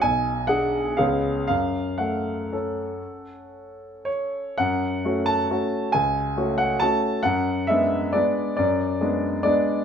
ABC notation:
X:1
M:3/4
L:1/8
Q:1/4=132
K:F#m
V:1 name="Grand piano"
g2 f2 ^e2 | ^e2 f4- | f4 c2 | f3 a3 |
g3 f a2 | f2 e2 d2 | d3 z d2 |]
V:2 name="Grand piano"
B,,,2 [DG]2 [C,,B,CG]2 | F,,2 A,2 [CA]2- | [CA]6 | F,,2 [A,CF]2 [A,CF]2 |
C,,2 [A,CF]2 [A,CF]2 | F,,2 [G,B,D]2 [G,B,D]2 | F,,2 [G,B,D]2 [G,B,D]2 |]